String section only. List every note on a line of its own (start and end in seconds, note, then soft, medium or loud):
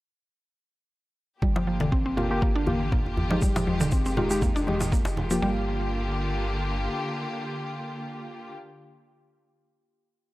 1.42 3.40 D3 medium
1.42 3.40 A#3 medium
1.42 5.38 F4 medium
1.42 5.38 G4 medium
3.42 5.40 D#3 medium
3.42 5.40 G#3 medium
5.43 8.53 D3 medium
5.43 8.53 A#3 medium
5.43 8.53 F4 medium
5.43 8.53 G4 medium